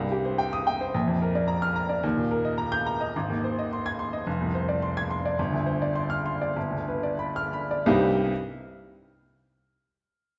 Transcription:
Already playing: C2
0.00 G2
0.12 G4
0.25 C5
0.38 G5
0.53 D#6
0.67 G5
0.81 C5
0.94 A#1
1.07 F2
1.22 A#4
1.35 D5
1.48 A#5
1.62 F6
1.76 A#5
1.89 D5
2.03 D#2
2.17 A#2
2.31 A#4
2.45 D#5
2.58 A#5
2.72 G6
2.86 A#5
3.01 D#5
3.16 G#1
3.30 D#2
3.44 C5
3.59 D#5
3.73 C6
3.86 G#6
3.99 C6
4.13 D#5
4.27 F1
4.41 C2
4.55 C5
4.69 D5
4.82 C6
4.97 G#6
5.11 C6
5.25 D5
5.39 G1
5.52 D2
5.66 C5
5.82 D5
5.95 C6
6.10 F6
6.26 C6
6.42 D5
6.56 G1
6.71 D2
6.88 B4
7.03 D5
7.19 B5
7.36 F6
7.53 B5
7.71 D5
7.86 C2 G2 G3 C4 D#4 G4

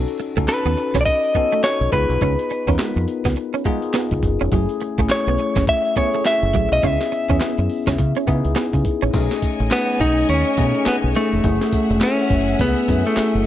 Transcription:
Already playing: C#4 D#4 F#4 A4
0.08 closed hi-hat
0.19 muted clean electric guitar stroke, closed hi-hat
0.37 C#2 A3 C#4 D#4 F#4 A4, kick, closed hi-hat
0.48 B4, snare, clap, closed hi-hat
0.65 D#2 B3, closed hi-hat
0.77 muted clean electric guitar stroke, closed hi-hat
0.94 B1 C#4, kick, snare, closed hi-hat
1.01 D5
1.05 D#5, muted clean electric guitar stroke, kick, closed hi-hat
1.23 closed hi-hat
1.35 B3 C#4 D#4 F#4 A4, kick, closed hi-hat
1.52 A3, closed hi-hat
1.64 C#5, snare, clap, closed hi-hat
1.81 B1, closed hi-hat
1.92 C#2 G#3 B3 D#4 F4 G#4 B4, kick, closed hi-hat
2.09 B1, closed hi-hat
2.21 C#2 C#4, kick, closed hi-hat
2.39 closed hi-hat
2.50 muted clean electric guitar stroke, closed hi-hat
2.67 E2 B3 C#4 D#4 F4 A#4, kick, closed hi-hat
2.75 B4, snare, clap, closed hi-hat
2.79 G#3
2.96 F2, muted clean electric guitar stroke, closed hi-hat
3.08 closed hi-hat
3.25 C#2 B3, kick, snare, closed hi-hat
3.36 muted clean electric guitar stroke, closed hi-hat
3.54 C#4, closed hi-hat
3.65 G#3 B3 D#4 F4 G#4, kick, closed hi-hat
3.82 closed hi-hat
3.94 B3, snare, clap, closed hi-hat
4.11 C#2, muted clean electric guitar stroke, kick, closed hi-hat
4.23 F#1, kick, closed hi-hat
4.41 F1 C#4, closed hi-hat
4.52 F#1 F#3 A3 C#4 E4 G#4, kick, closed hi-hat
4.69 closed hi-hat
4.81 muted clean electric guitar stroke, closed hi-hat
4.98 A1 A3 C#4 E4 G#4, kick, closed hi-hat
5.09 C#5, snare, clap, closed hi-hat
5.27 B1 B3, closed hi-hat
5.38 muted clean electric guitar stroke, closed hi-hat
5.56 F#1 C#4, kick, snare, closed hi-hat
5.67 E5, muted clean electric guitar stroke, kick, closed hi-hat
5.85 closed hi-hat
5.96 A3 B3 C#4 E4 G#4 C#5, kick, closed hi-hat
6.14 A3, closed hi-hat
6.25 E5, snare, clap, closed hi-hat
6.43 F#1, closed hi-hat
6.54 A1 F#3, kick, closed hi-hat
6.72 B1 D#5, closed hi-hat
6.83 C#2 B3 C#4 E4 G#4 E5, kick, closed hi-hat
7.01 snare, closed hi-hat
7.12 muted clean electric guitar stroke, closed hi-hat
7.29 E2 B3 C#4 E4 G#4, kick, closed hi-hat
7.40 B3, snare, clap, closed hi-hat
7.58 F#2, muted clean electric guitar stroke, closed hi-hat
7.70 open hi-hat
7.87 C#2 C#4, kick, snare, closed hi-hat
7.98 C#3, muted clean electric guitar stroke, kick, closed hi-hat
8.16 C#4, closed hi-hat
8.27 C#3 B3 D#4 E4 G#4, kick, closed hi-hat
8.45 C#2, closed hi-hat
8.56 B3, snare, clap, closed hi-hat
8.73 C#3, muted clean electric guitar stroke, kick, closed hi-hat
8.85 kick, closed hi-hat
9.02 A1 C#4, closed hi-hat
9.13 B1 A3 C#4 D#4 G#4 C#5 D#5 G#5, kick, closed hi-hat, crash, tambourine
9.31 snare
9.42 kick, closed hi-hat, tambourine
9.60 A1, closed hi-hat
9.71 B3, snare, clap, closed hi-hat, tambourine
10.00 B1 D#4, kick, closed hi-hat
10.17 closed hi-hat
10.29 D#2 C#4, closed hi-hat, tambourine
10.57 B2 A3 C#4 D#4 G#4, kick, closed hi-hat, tambourine
10.75 closed hi-hat
10.86 B3, muted fingered electric bass stroke, snare, clap, closed hi-hat, tambourine
11.04 B1
11.15 A3 C#4 D#4 A4, open hi-hat, tambourine
11.33 E1, closed hi-hat
11.44 F#1 A3 C#4 E4 G#4 E5 F#5, kick, closed hi-hat, tambourine
11.61 snare
11.72 kick, closed hi-hat, tambourine
11.90 E1, closed hi-hat
12.01 C#4, snare, clap, closed hi-hat, tambourine
12.30 F#1, kick, closed hi-hat
12.48 closed hi-hat
12.59 C#2 B3, kick, closed hi-hat, tambourine
12.88 F#2 A3 C#4 E4 G#4, kick, closed hi-hat, tambourine
13.05 A3, closed hi-hat
13.17 muted fingered electric bass stroke, snare, clap, closed hi-hat, tambourine
13.35 F#1

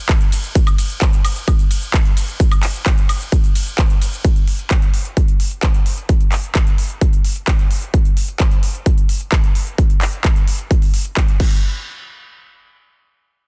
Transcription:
0.09 kick, clap, closed hi-hat, shaker
0.21 closed hi-hat
0.32 open hi-hat, ride, shaker
0.44 closed hi-hat, shaker
0.55 kick, closed hi-hat, ride, shaker
0.67 closed hi-hat, high woodblock, shaker
0.78 open hi-hat, ride, shaker
0.90 closed hi-hat, shaker
1.02 kick, clap, closed hi-hat, ride, shaker
1.13 closed hi-hat, shaker
1.25 open hi-hat, ride, high woodblock, shaker
1.36 closed hi-hat, shaker
1.48 kick, closed hi-hat, ride, high woodblock, shaker
1.59 closed hi-hat, shaker
1.71 open hi-hat, ride, shaker
1.82 closed hi-hat, shaker
1.94 kick, clap, closed hi-hat, ride, shaker
2.05 closed hi-hat
2.17 open hi-hat, ride, shaker
2.28 closed hi-hat, shaker
2.40 kick, closed hi-hat, ride, shaker
2.52 closed hi-hat, high woodblock, shaker
2.63 clap, open hi-hat, ride, shaker
2.75 closed hi-hat, shaker
2.86 kick, clap, closed hi-hat, ride, shaker
2.98 closed hi-hat, shaker
3.09 open hi-hat, ride, high woodblock, shaker
3.21 closed hi-hat, shaker
3.32 kick, closed hi-hat, ride, shaker
3.44 closed hi-hat, shaker
3.55 open hi-hat, ride, shaker
3.67 closed hi-hat, shaker
3.78 kick, clap, closed hi-hat, shaker
3.90 closed hi-hat
4.02 open hi-hat, ride, shaker
4.13 closed hi-hat, shaker
4.25 kick, closed hi-hat
4.36 closed hi-hat
4.48 open hi-hat
4.59 closed hi-hat
4.71 kick, clap, closed hi-hat
4.82 closed hi-hat
4.94 open hi-hat
5.05 closed hi-hat
5.17 kick, closed hi-hat
5.28 closed hi-hat
5.40 open hi-hat
5.51 closed hi-hat
5.63 kick, clap, closed hi-hat
5.74 closed hi-hat
5.86 open hi-hat
5.98 closed hi-hat
6.09 kick, closed hi-hat
6.21 closed hi-hat
6.32 clap, open hi-hat
6.44 closed hi-hat
6.55 kick, clap, closed hi-hat
6.67 closed hi-hat
6.78 open hi-hat
6.90 closed hi-hat
7.01 kick, closed hi-hat
7.13 closed hi-hat
7.25 open hi-hat
7.36 closed hi-hat
7.48 kick, clap, closed hi-hat
7.59 closed hi-hat
7.71 open hi-hat
7.82 closed hi-hat
7.94 kick, closed hi-hat
8.05 closed hi-hat
8.17 open hi-hat
8.28 closed hi-hat
8.40 kick, clap, closed hi-hat
8.51 closed hi-hat
8.63 open hi-hat
8.75 closed hi-hat
8.86 kick, closed hi-hat
8.98 closed hi-hat
9.09 open hi-hat
9.21 closed hi-hat
9.32 kick, clap, closed hi-hat
9.44 closed hi-hat
9.55 open hi-hat
9.67 closed hi-hat
9.78 kick, closed hi-hat
9.90 closed hi-hat
10.01 clap, open hi-hat
10.13 closed hi-hat
10.25 kick, clap, closed hi-hat
10.36 closed hi-hat
10.48 open hi-hat
10.59 closed hi-hat
10.71 kick, closed hi-hat
10.82 open hi-hat
10.94 open hi-hat
11.05 closed hi-hat
11.17 kick, clap, closed hi-hat
11.28 closed hi-hat
11.40 kick, crash

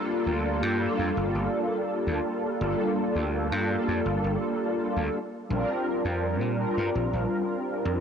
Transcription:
Already playing: G3 A#3 D4 F4 A4
0.26 D2
0.63 G2
0.79 G3 A#3 D4 F4 A4
0.99 F2
1.17 G1
1.35 G1
2.07 D2
2.60 G1 G3 A#3 D4 F4 A4
3.15 D2
3.52 G2
3.68 G3 A#3 D4 F4 A4
3.88 F2
4.06 G1
4.24 G1
4.96 D2
5.49 A#1 G3 C4 D4 F4 A#4
6.05 F2
6.41 A#2
6.57 G3 C4 D4 F4 A#4
6.77 G2
6.95 A#1
7.13 A#1
7.85 F2

